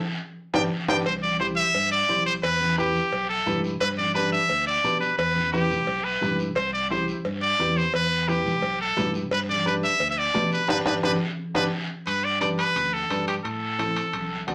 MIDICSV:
0, 0, Header, 1, 5, 480
1, 0, Start_track
1, 0, Key_signature, 1, "major"
1, 0, Tempo, 344037
1, 1476, Time_signature, 4, 2, 24, 8
1, 20297, End_track
2, 0, Start_track
2, 0, Title_t, "Muted trumpet"
2, 0, Program_c, 0, 59
2, 761, Note_on_c, 0, 79, 86
2, 875, Note_off_c, 0, 79, 0
2, 1243, Note_on_c, 0, 79, 102
2, 1356, Note_off_c, 0, 79, 0
2, 1478, Note_on_c, 0, 72, 88
2, 1586, Note_off_c, 0, 72, 0
2, 1706, Note_on_c, 0, 74, 90
2, 1934, Note_off_c, 0, 74, 0
2, 1947, Note_on_c, 0, 72, 88
2, 2057, Note_off_c, 0, 72, 0
2, 2182, Note_on_c, 0, 76, 117
2, 2635, Note_off_c, 0, 76, 0
2, 2672, Note_on_c, 0, 74, 98
2, 3120, Note_off_c, 0, 74, 0
2, 3150, Note_on_c, 0, 72, 92
2, 3260, Note_off_c, 0, 72, 0
2, 3389, Note_on_c, 0, 71, 100
2, 3838, Note_off_c, 0, 71, 0
2, 3881, Note_on_c, 0, 67, 86
2, 4548, Note_off_c, 0, 67, 0
2, 4593, Note_on_c, 0, 69, 91
2, 5041, Note_off_c, 0, 69, 0
2, 5309, Note_on_c, 0, 71, 96
2, 5419, Note_off_c, 0, 71, 0
2, 5548, Note_on_c, 0, 74, 87
2, 5775, Note_off_c, 0, 74, 0
2, 5781, Note_on_c, 0, 71, 90
2, 6011, Note_off_c, 0, 71, 0
2, 6031, Note_on_c, 0, 76, 102
2, 6480, Note_off_c, 0, 76, 0
2, 6512, Note_on_c, 0, 74, 92
2, 6960, Note_off_c, 0, 74, 0
2, 6981, Note_on_c, 0, 71, 79
2, 7211, Note_off_c, 0, 71, 0
2, 7221, Note_on_c, 0, 71, 91
2, 7675, Note_off_c, 0, 71, 0
2, 7707, Note_on_c, 0, 67, 85
2, 8426, Note_on_c, 0, 71, 94
2, 8447, Note_off_c, 0, 67, 0
2, 8911, Note_off_c, 0, 71, 0
2, 9146, Note_on_c, 0, 72, 85
2, 9374, Note_off_c, 0, 72, 0
2, 9389, Note_on_c, 0, 74, 81
2, 9615, Note_off_c, 0, 74, 0
2, 9630, Note_on_c, 0, 72, 72
2, 9856, Note_off_c, 0, 72, 0
2, 10349, Note_on_c, 0, 74, 94
2, 10840, Note_on_c, 0, 72, 83
2, 10861, Note_off_c, 0, 74, 0
2, 11078, Note_off_c, 0, 72, 0
2, 11090, Note_on_c, 0, 71, 97
2, 11563, Note_on_c, 0, 67, 81
2, 11584, Note_off_c, 0, 71, 0
2, 12279, Note_off_c, 0, 67, 0
2, 12290, Note_on_c, 0, 69, 92
2, 12730, Note_off_c, 0, 69, 0
2, 13008, Note_on_c, 0, 71, 91
2, 13113, Note_off_c, 0, 71, 0
2, 13248, Note_on_c, 0, 74, 93
2, 13465, Note_off_c, 0, 74, 0
2, 13490, Note_on_c, 0, 71, 83
2, 13594, Note_off_c, 0, 71, 0
2, 13724, Note_on_c, 0, 76, 108
2, 14075, Note_off_c, 0, 76, 0
2, 14099, Note_on_c, 0, 76, 83
2, 14206, Note_on_c, 0, 74, 98
2, 14227, Note_off_c, 0, 76, 0
2, 14680, Note_off_c, 0, 74, 0
2, 14691, Note_on_c, 0, 71, 90
2, 14906, Note_off_c, 0, 71, 0
2, 14926, Note_on_c, 0, 71, 99
2, 15038, Note_off_c, 0, 71, 0
2, 15161, Note_on_c, 0, 71, 88
2, 15274, Note_off_c, 0, 71, 0
2, 15402, Note_on_c, 0, 71, 98
2, 15515, Note_off_c, 0, 71, 0
2, 16127, Note_on_c, 0, 71, 93
2, 16238, Note_off_c, 0, 71, 0
2, 16833, Note_on_c, 0, 71, 93
2, 17079, Note_on_c, 0, 74, 84
2, 17100, Note_off_c, 0, 71, 0
2, 17302, Note_off_c, 0, 74, 0
2, 17310, Note_on_c, 0, 74, 81
2, 17420, Note_off_c, 0, 74, 0
2, 17561, Note_on_c, 0, 71, 101
2, 18044, Note_on_c, 0, 69, 87
2, 18065, Note_off_c, 0, 71, 0
2, 18511, Note_off_c, 0, 69, 0
2, 18520, Note_on_c, 0, 67, 70
2, 18627, Note_off_c, 0, 67, 0
2, 18760, Note_on_c, 0, 69, 81
2, 20146, Note_off_c, 0, 69, 0
2, 20297, End_track
3, 0, Start_track
3, 0, Title_t, "Upright piano"
3, 0, Program_c, 1, 0
3, 746, Note_on_c, 1, 62, 96
3, 747, Note_on_c, 1, 67, 84
3, 748, Note_on_c, 1, 71, 90
3, 903, Note_off_c, 1, 62, 0
3, 904, Note_off_c, 1, 67, 0
3, 905, Note_off_c, 1, 71, 0
3, 1231, Note_on_c, 1, 67, 102
3, 1234, Note_on_c, 1, 62, 98
3, 1235, Note_on_c, 1, 71, 100
3, 1387, Note_off_c, 1, 67, 0
3, 1388, Note_off_c, 1, 62, 0
3, 1389, Note_off_c, 1, 71, 0
3, 1949, Note_on_c, 1, 64, 75
3, 1955, Note_on_c, 1, 67, 69
3, 1958, Note_on_c, 1, 72, 84
3, 2288, Note_off_c, 1, 64, 0
3, 2291, Note_off_c, 1, 67, 0
3, 2293, Note_off_c, 1, 72, 0
3, 2909, Note_on_c, 1, 64, 66
3, 2915, Note_on_c, 1, 67, 62
3, 2919, Note_on_c, 1, 72, 77
3, 3248, Note_off_c, 1, 64, 0
3, 3251, Note_off_c, 1, 67, 0
3, 3253, Note_off_c, 1, 72, 0
3, 3871, Note_on_c, 1, 64, 72
3, 3875, Note_on_c, 1, 67, 67
3, 3881, Note_on_c, 1, 71, 88
3, 4209, Note_off_c, 1, 64, 0
3, 4211, Note_off_c, 1, 67, 0
3, 4214, Note_off_c, 1, 71, 0
3, 4828, Note_on_c, 1, 64, 74
3, 4834, Note_on_c, 1, 67, 59
3, 4840, Note_on_c, 1, 71, 80
3, 5168, Note_off_c, 1, 64, 0
3, 5171, Note_off_c, 1, 67, 0
3, 5174, Note_off_c, 1, 71, 0
3, 5784, Note_on_c, 1, 62, 80
3, 5789, Note_on_c, 1, 67, 72
3, 5794, Note_on_c, 1, 71, 86
3, 6126, Note_off_c, 1, 62, 0
3, 6128, Note_off_c, 1, 67, 0
3, 6131, Note_off_c, 1, 71, 0
3, 6747, Note_on_c, 1, 62, 70
3, 6755, Note_on_c, 1, 67, 59
3, 6760, Note_on_c, 1, 71, 72
3, 7088, Note_off_c, 1, 62, 0
3, 7092, Note_off_c, 1, 67, 0
3, 7094, Note_off_c, 1, 71, 0
3, 7712, Note_on_c, 1, 64, 74
3, 7716, Note_on_c, 1, 67, 69
3, 7721, Note_on_c, 1, 71, 88
3, 8050, Note_off_c, 1, 64, 0
3, 8052, Note_off_c, 1, 67, 0
3, 8055, Note_off_c, 1, 71, 0
3, 8670, Note_on_c, 1, 64, 65
3, 8676, Note_on_c, 1, 67, 57
3, 8685, Note_on_c, 1, 71, 80
3, 9009, Note_off_c, 1, 64, 0
3, 9012, Note_off_c, 1, 67, 0
3, 9017, Note_off_c, 1, 71, 0
3, 9630, Note_on_c, 1, 64, 83
3, 9637, Note_on_c, 1, 67, 70
3, 9643, Note_on_c, 1, 72, 87
3, 9969, Note_off_c, 1, 64, 0
3, 9973, Note_off_c, 1, 67, 0
3, 9976, Note_off_c, 1, 72, 0
3, 10589, Note_on_c, 1, 64, 71
3, 10595, Note_on_c, 1, 67, 65
3, 10601, Note_on_c, 1, 71, 73
3, 10929, Note_off_c, 1, 64, 0
3, 10931, Note_off_c, 1, 67, 0
3, 10934, Note_off_c, 1, 71, 0
3, 11545, Note_on_c, 1, 64, 71
3, 11548, Note_on_c, 1, 67, 69
3, 11553, Note_on_c, 1, 71, 84
3, 11886, Note_off_c, 1, 64, 0
3, 11888, Note_off_c, 1, 67, 0
3, 11890, Note_off_c, 1, 71, 0
3, 12508, Note_on_c, 1, 64, 67
3, 12517, Note_on_c, 1, 67, 59
3, 12520, Note_on_c, 1, 71, 74
3, 12848, Note_off_c, 1, 64, 0
3, 12852, Note_off_c, 1, 67, 0
3, 12854, Note_off_c, 1, 71, 0
3, 13466, Note_on_c, 1, 62, 77
3, 13474, Note_on_c, 1, 67, 70
3, 13477, Note_on_c, 1, 71, 88
3, 13806, Note_off_c, 1, 62, 0
3, 13810, Note_off_c, 1, 67, 0
3, 13812, Note_off_c, 1, 71, 0
3, 14424, Note_on_c, 1, 62, 65
3, 14428, Note_on_c, 1, 67, 63
3, 14435, Note_on_c, 1, 71, 76
3, 14765, Note_off_c, 1, 62, 0
3, 14767, Note_off_c, 1, 67, 0
3, 14770, Note_off_c, 1, 71, 0
3, 14901, Note_on_c, 1, 67, 96
3, 14902, Note_on_c, 1, 71, 97
3, 14903, Note_on_c, 1, 62, 92
3, 15060, Note_off_c, 1, 67, 0
3, 15061, Note_off_c, 1, 62, 0
3, 15061, Note_off_c, 1, 71, 0
3, 15144, Note_on_c, 1, 62, 97
3, 15146, Note_on_c, 1, 67, 87
3, 15147, Note_on_c, 1, 71, 91
3, 15302, Note_off_c, 1, 62, 0
3, 15303, Note_off_c, 1, 67, 0
3, 15304, Note_off_c, 1, 71, 0
3, 15390, Note_on_c, 1, 62, 103
3, 15390, Note_on_c, 1, 67, 104
3, 15391, Note_on_c, 1, 71, 101
3, 15545, Note_off_c, 1, 62, 0
3, 15545, Note_off_c, 1, 67, 0
3, 15546, Note_off_c, 1, 71, 0
3, 16106, Note_on_c, 1, 62, 89
3, 16109, Note_on_c, 1, 71, 83
3, 16110, Note_on_c, 1, 67, 87
3, 16263, Note_off_c, 1, 62, 0
3, 16265, Note_off_c, 1, 71, 0
3, 16266, Note_off_c, 1, 67, 0
3, 17306, Note_on_c, 1, 62, 69
3, 17312, Note_on_c, 1, 67, 64
3, 17317, Note_on_c, 1, 71, 79
3, 17647, Note_off_c, 1, 62, 0
3, 17650, Note_off_c, 1, 67, 0
3, 17653, Note_off_c, 1, 71, 0
3, 18277, Note_on_c, 1, 62, 65
3, 18285, Note_on_c, 1, 67, 54
3, 18289, Note_on_c, 1, 71, 70
3, 18614, Note_off_c, 1, 62, 0
3, 18618, Note_off_c, 1, 67, 0
3, 18620, Note_off_c, 1, 71, 0
3, 19233, Note_on_c, 1, 60, 69
3, 19237, Note_on_c, 1, 64, 59
3, 19244, Note_on_c, 1, 69, 79
3, 19573, Note_off_c, 1, 60, 0
3, 19575, Note_off_c, 1, 64, 0
3, 19578, Note_off_c, 1, 69, 0
3, 20189, Note_on_c, 1, 59, 72
3, 20192, Note_on_c, 1, 62, 75
3, 20200, Note_on_c, 1, 66, 73
3, 20297, Note_off_c, 1, 59, 0
3, 20297, Note_off_c, 1, 62, 0
3, 20297, Note_off_c, 1, 66, 0
3, 20297, End_track
4, 0, Start_track
4, 0, Title_t, "Fingered electric bass"
4, 0, Program_c, 2, 33
4, 754, Note_on_c, 2, 31, 105
4, 934, Note_off_c, 2, 31, 0
4, 1233, Note_on_c, 2, 31, 101
4, 1413, Note_off_c, 2, 31, 0
4, 1475, Note_on_c, 2, 36, 105
4, 2243, Note_off_c, 2, 36, 0
4, 2434, Note_on_c, 2, 43, 98
4, 2819, Note_off_c, 2, 43, 0
4, 2916, Note_on_c, 2, 35, 97
4, 3300, Note_off_c, 2, 35, 0
4, 3397, Note_on_c, 2, 40, 96
4, 4165, Note_off_c, 2, 40, 0
4, 4357, Note_on_c, 2, 35, 94
4, 4740, Note_off_c, 2, 35, 0
4, 4833, Note_on_c, 2, 43, 100
4, 5218, Note_off_c, 2, 43, 0
4, 5314, Note_on_c, 2, 43, 106
4, 6083, Note_off_c, 2, 43, 0
4, 6273, Note_on_c, 2, 38, 93
4, 6658, Note_off_c, 2, 38, 0
4, 6753, Note_on_c, 2, 47, 107
4, 7138, Note_off_c, 2, 47, 0
4, 7230, Note_on_c, 2, 40, 105
4, 8000, Note_off_c, 2, 40, 0
4, 8191, Note_on_c, 2, 35, 99
4, 8577, Note_off_c, 2, 35, 0
4, 8667, Note_on_c, 2, 43, 113
4, 9055, Note_off_c, 2, 43, 0
4, 9150, Note_on_c, 2, 36, 113
4, 9921, Note_off_c, 2, 36, 0
4, 10113, Note_on_c, 2, 43, 96
4, 10498, Note_off_c, 2, 43, 0
4, 10593, Note_on_c, 2, 40, 113
4, 10978, Note_off_c, 2, 40, 0
4, 11074, Note_on_c, 2, 40, 108
4, 11843, Note_off_c, 2, 40, 0
4, 12032, Note_on_c, 2, 35, 101
4, 12417, Note_off_c, 2, 35, 0
4, 12510, Note_on_c, 2, 43, 105
4, 12896, Note_off_c, 2, 43, 0
4, 12991, Note_on_c, 2, 43, 103
4, 13760, Note_off_c, 2, 43, 0
4, 13951, Note_on_c, 2, 38, 94
4, 14336, Note_off_c, 2, 38, 0
4, 14433, Note_on_c, 2, 47, 111
4, 14818, Note_off_c, 2, 47, 0
4, 14914, Note_on_c, 2, 31, 97
4, 15093, Note_off_c, 2, 31, 0
4, 15150, Note_on_c, 2, 31, 98
4, 15331, Note_off_c, 2, 31, 0
4, 15393, Note_on_c, 2, 31, 104
4, 15572, Note_off_c, 2, 31, 0
4, 16116, Note_on_c, 2, 31, 99
4, 16294, Note_off_c, 2, 31, 0
4, 16838, Note_on_c, 2, 43, 80
4, 17606, Note_off_c, 2, 43, 0
4, 17799, Note_on_c, 2, 38, 78
4, 18183, Note_off_c, 2, 38, 0
4, 18278, Note_on_c, 2, 43, 80
4, 18662, Note_off_c, 2, 43, 0
4, 18755, Note_on_c, 2, 45, 84
4, 19526, Note_off_c, 2, 45, 0
4, 19715, Note_on_c, 2, 35, 79
4, 20102, Note_off_c, 2, 35, 0
4, 20200, Note_on_c, 2, 38, 83
4, 20297, Note_off_c, 2, 38, 0
4, 20297, End_track
5, 0, Start_track
5, 0, Title_t, "Drums"
5, 750, Note_on_c, 9, 65, 101
5, 755, Note_on_c, 9, 74, 98
5, 758, Note_on_c, 9, 63, 99
5, 889, Note_off_c, 9, 65, 0
5, 894, Note_off_c, 9, 74, 0
5, 898, Note_off_c, 9, 63, 0
5, 1234, Note_on_c, 9, 65, 103
5, 1238, Note_on_c, 9, 63, 95
5, 1239, Note_on_c, 9, 74, 104
5, 1374, Note_off_c, 9, 65, 0
5, 1377, Note_off_c, 9, 63, 0
5, 1379, Note_off_c, 9, 74, 0
5, 1476, Note_on_c, 9, 74, 59
5, 1477, Note_on_c, 9, 56, 93
5, 1616, Note_off_c, 9, 56, 0
5, 1616, Note_off_c, 9, 74, 0
5, 1723, Note_on_c, 9, 63, 66
5, 1863, Note_off_c, 9, 63, 0
5, 1952, Note_on_c, 9, 73, 64
5, 1965, Note_on_c, 9, 63, 80
5, 2091, Note_off_c, 9, 73, 0
5, 2105, Note_off_c, 9, 63, 0
5, 2198, Note_on_c, 9, 73, 64
5, 2337, Note_off_c, 9, 73, 0
5, 2435, Note_on_c, 9, 74, 72
5, 2436, Note_on_c, 9, 56, 78
5, 2575, Note_off_c, 9, 56, 0
5, 2575, Note_off_c, 9, 74, 0
5, 2916, Note_on_c, 9, 73, 66
5, 2925, Note_on_c, 9, 63, 82
5, 3055, Note_off_c, 9, 73, 0
5, 3064, Note_off_c, 9, 63, 0
5, 3159, Note_on_c, 9, 73, 66
5, 3299, Note_off_c, 9, 73, 0
5, 3395, Note_on_c, 9, 56, 103
5, 3401, Note_on_c, 9, 74, 71
5, 3535, Note_off_c, 9, 56, 0
5, 3540, Note_off_c, 9, 74, 0
5, 3642, Note_on_c, 9, 63, 75
5, 3781, Note_off_c, 9, 63, 0
5, 3878, Note_on_c, 9, 73, 69
5, 3882, Note_on_c, 9, 63, 76
5, 4017, Note_off_c, 9, 73, 0
5, 4021, Note_off_c, 9, 63, 0
5, 4117, Note_on_c, 9, 73, 70
5, 4257, Note_off_c, 9, 73, 0
5, 4358, Note_on_c, 9, 74, 74
5, 4360, Note_on_c, 9, 56, 79
5, 4498, Note_off_c, 9, 74, 0
5, 4499, Note_off_c, 9, 56, 0
5, 4836, Note_on_c, 9, 73, 70
5, 4837, Note_on_c, 9, 63, 79
5, 4837, Note_on_c, 9, 64, 82
5, 4976, Note_off_c, 9, 73, 0
5, 4977, Note_off_c, 9, 63, 0
5, 4977, Note_off_c, 9, 64, 0
5, 5080, Note_on_c, 9, 73, 72
5, 5219, Note_off_c, 9, 73, 0
5, 5317, Note_on_c, 9, 56, 113
5, 5320, Note_on_c, 9, 74, 66
5, 5456, Note_off_c, 9, 56, 0
5, 5459, Note_off_c, 9, 74, 0
5, 5559, Note_on_c, 9, 63, 67
5, 5699, Note_off_c, 9, 63, 0
5, 5794, Note_on_c, 9, 73, 72
5, 5799, Note_on_c, 9, 63, 87
5, 5934, Note_off_c, 9, 73, 0
5, 5939, Note_off_c, 9, 63, 0
5, 6032, Note_on_c, 9, 73, 61
5, 6171, Note_off_c, 9, 73, 0
5, 6271, Note_on_c, 9, 56, 80
5, 6271, Note_on_c, 9, 74, 73
5, 6410, Note_off_c, 9, 74, 0
5, 6411, Note_off_c, 9, 56, 0
5, 6749, Note_on_c, 9, 73, 72
5, 6756, Note_on_c, 9, 63, 82
5, 6889, Note_off_c, 9, 73, 0
5, 6896, Note_off_c, 9, 63, 0
5, 6993, Note_on_c, 9, 73, 70
5, 7132, Note_off_c, 9, 73, 0
5, 7231, Note_on_c, 9, 74, 68
5, 7237, Note_on_c, 9, 56, 100
5, 7371, Note_off_c, 9, 74, 0
5, 7377, Note_off_c, 9, 56, 0
5, 7479, Note_on_c, 9, 63, 72
5, 7618, Note_off_c, 9, 63, 0
5, 7714, Note_on_c, 9, 73, 72
5, 7718, Note_on_c, 9, 63, 89
5, 7853, Note_off_c, 9, 73, 0
5, 7857, Note_off_c, 9, 63, 0
5, 7955, Note_on_c, 9, 73, 69
5, 7960, Note_on_c, 9, 64, 72
5, 8094, Note_off_c, 9, 73, 0
5, 8099, Note_off_c, 9, 64, 0
5, 8193, Note_on_c, 9, 56, 84
5, 8196, Note_on_c, 9, 74, 76
5, 8333, Note_off_c, 9, 56, 0
5, 8335, Note_off_c, 9, 74, 0
5, 8673, Note_on_c, 9, 73, 73
5, 8679, Note_on_c, 9, 63, 89
5, 8679, Note_on_c, 9, 64, 76
5, 8812, Note_off_c, 9, 73, 0
5, 8818, Note_off_c, 9, 63, 0
5, 8818, Note_off_c, 9, 64, 0
5, 8914, Note_on_c, 9, 73, 71
5, 9053, Note_off_c, 9, 73, 0
5, 9151, Note_on_c, 9, 74, 64
5, 9152, Note_on_c, 9, 56, 105
5, 9290, Note_off_c, 9, 74, 0
5, 9291, Note_off_c, 9, 56, 0
5, 9635, Note_on_c, 9, 73, 65
5, 9640, Note_on_c, 9, 63, 85
5, 9775, Note_off_c, 9, 73, 0
5, 9780, Note_off_c, 9, 63, 0
5, 9876, Note_on_c, 9, 73, 65
5, 10015, Note_off_c, 9, 73, 0
5, 10114, Note_on_c, 9, 56, 83
5, 10117, Note_on_c, 9, 74, 71
5, 10253, Note_off_c, 9, 56, 0
5, 10257, Note_off_c, 9, 74, 0
5, 10601, Note_on_c, 9, 73, 68
5, 10603, Note_on_c, 9, 63, 80
5, 10740, Note_off_c, 9, 73, 0
5, 10743, Note_off_c, 9, 63, 0
5, 10837, Note_on_c, 9, 73, 74
5, 10977, Note_off_c, 9, 73, 0
5, 11073, Note_on_c, 9, 56, 100
5, 11076, Note_on_c, 9, 74, 61
5, 11212, Note_off_c, 9, 56, 0
5, 11215, Note_off_c, 9, 74, 0
5, 11555, Note_on_c, 9, 73, 69
5, 11559, Note_on_c, 9, 63, 87
5, 11695, Note_off_c, 9, 73, 0
5, 11698, Note_off_c, 9, 63, 0
5, 11798, Note_on_c, 9, 73, 68
5, 11801, Note_on_c, 9, 64, 75
5, 11937, Note_off_c, 9, 73, 0
5, 11940, Note_off_c, 9, 64, 0
5, 12032, Note_on_c, 9, 56, 81
5, 12037, Note_on_c, 9, 74, 75
5, 12171, Note_off_c, 9, 56, 0
5, 12176, Note_off_c, 9, 74, 0
5, 12513, Note_on_c, 9, 66, 64
5, 12516, Note_on_c, 9, 73, 75
5, 12521, Note_on_c, 9, 63, 79
5, 12521, Note_on_c, 9, 64, 84
5, 12653, Note_off_c, 9, 66, 0
5, 12656, Note_off_c, 9, 73, 0
5, 12661, Note_off_c, 9, 63, 0
5, 12661, Note_off_c, 9, 64, 0
5, 12753, Note_on_c, 9, 73, 72
5, 12892, Note_off_c, 9, 73, 0
5, 12994, Note_on_c, 9, 74, 63
5, 12995, Note_on_c, 9, 56, 106
5, 13134, Note_off_c, 9, 56, 0
5, 13134, Note_off_c, 9, 74, 0
5, 13240, Note_on_c, 9, 63, 67
5, 13380, Note_off_c, 9, 63, 0
5, 13474, Note_on_c, 9, 73, 66
5, 13478, Note_on_c, 9, 63, 89
5, 13614, Note_off_c, 9, 73, 0
5, 13618, Note_off_c, 9, 63, 0
5, 13717, Note_on_c, 9, 73, 72
5, 13856, Note_off_c, 9, 73, 0
5, 13953, Note_on_c, 9, 56, 85
5, 13960, Note_on_c, 9, 74, 74
5, 14093, Note_off_c, 9, 56, 0
5, 14099, Note_off_c, 9, 74, 0
5, 14434, Note_on_c, 9, 66, 72
5, 14435, Note_on_c, 9, 73, 66
5, 14440, Note_on_c, 9, 63, 86
5, 14573, Note_off_c, 9, 66, 0
5, 14574, Note_off_c, 9, 73, 0
5, 14579, Note_off_c, 9, 63, 0
5, 14671, Note_on_c, 9, 73, 79
5, 14811, Note_off_c, 9, 73, 0
5, 14910, Note_on_c, 9, 65, 94
5, 14914, Note_on_c, 9, 74, 98
5, 14915, Note_on_c, 9, 63, 95
5, 15050, Note_off_c, 9, 65, 0
5, 15053, Note_off_c, 9, 74, 0
5, 15055, Note_off_c, 9, 63, 0
5, 15147, Note_on_c, 9, 65, 99
5, 15149, Note_on_c, 9, 74, 101
5, 15155, Note_on_c, 9, 63, 96
5, 15287, Note_off_c, 9, 65, 0
5, 15288, Note_off_c, 9, 74, 0
5, 15295, Note_off_c, 9, 63, 0
5, 15392, Note_on_c, 9, 65, 82
5, 15392, Note_on_c, 9, 74, 94
5, 15399, Note_on_c, 9, 63, 103
5, 15531, Note_off_c, 9, 74, 0
5, 15532, Note_off_c, 9, 65, 0
5, 15539, Note_off_c, 9, 63, 0
5, 16111, Note_on_c, 9, 74, 103
5, 16114, Note_on_c, 9, 65, 93
5, 16117, Note_on_c, 9, 63, 102
5, 16250, Note_off_c, 9, 74, 0
5, 16253, Note_off_c, 9, 65, 0
5, 16256, Note_off_c, 9, 63, 0
5, 16836, Note_on_c, 9, 74, 62
5, 16840, Note_on_c, 9, 65, 63
5, 16976, Note_off_c, 9, 74, 0
5, 16980, Note_off_c, 9, 65, 0
5, 17318, Note_on_c, 9, 73, 69
5, 17319, Note_on_c, 9, 63, 77
5, 17324, Note_on_c, 9, 65, 56
5, 17457, Note_off_c, 9, 73, 0
5, 17459, Note_off_c, 9, 63, 0
5, 17464, Note_off_c, 9, 65, 0
5, 17560, Note_on_c, 9, 73, 58
5, 17563, Note_on_c, 9, 65, 72
5, 17699, Note_off_c, 9, 73, 0
5, 17702, Note_off_c, 9, 65, 0
5, 17798, Note_on_c, 9, 74, 62
5, 17801, Note_on_c, 9, 63, 65
5, 17803, Note_on_c, 9, 65, 62
5, 17938, Note_off_c, 9, 74, 0
5, 17941, Note_off_c, 9, 63, 0
5, 17943, Note_off_c, 9, 65, 0
5, 18281, Note_on_c, 9, 73, 67
5, 18283, Note_on_c, 9, 63, 72
5, 18283, Note_on_c, 9, 65, 62
5, 18421, Note_off_c, 9, 73, 0
5, 18423, Note_off_c, 9, 63, 0
5, 18423, Note_off_c, 9, 65, 0
5, 18519, Note_on_c, 9, 73, 62
5, 18527, Note_on_c, 9, 65, 69
5, 18659, Note_off_c, 9, 73, 0
5, 18666, Note_off_c, 9, 65, 0
5, 18758, Note_on_c, 9, 74, 56
5, 18767, Note_on_c, 9, 65, 56
5, 18898, Note_off_c, 9, 74, 0
5, 18906, Note_off_c, 9, 65, 0
5, 19235, Note_on_c, 9, 73, 65
5, 19242, Note_on_c, 9, 63, 73
5, 19244, Note_on_c, 9, 65, 65
5, 19375, Note_off_c, 9, 73, 0
5, 19382, Note_off_c, 9, 63, 0
5, 19383, Note_off_c, 9, 65, 0
5, 19479, Note_on_c, 9, 73, 63
5, 19483, Note_on_c, 9, 65, 66
5, 19619, Note_off_c, 9, 73, 0
5, 19623, Note_off_c, 9, 65, 0
5, 19719, Note_on_c, 9, 65, 60
5, 19719, Note_on_c, 9, 74, 69
5, 19723, Note_on_c, 9, 63, 68
5, 19859, Note_off_c, 9, 65, 0
5, 19859, Note_off_c, 9, 74, 0
5, 19862, Note_off_c, 9, 63, 0
5, 20198, Note_on_c, 9, 73, 60
5, 20201, Note_on_c, 9, 65, 59
5, 20202, Note_on_c, 9, 63, 76
5, 20297, Note_off_c, 9, 63, 0
5, 20297, Note_off_c, 9, 65, 0
5, 20297, Note_off_c, 9, 73, 0
5, 20297, End_track
0, 0, End_of_file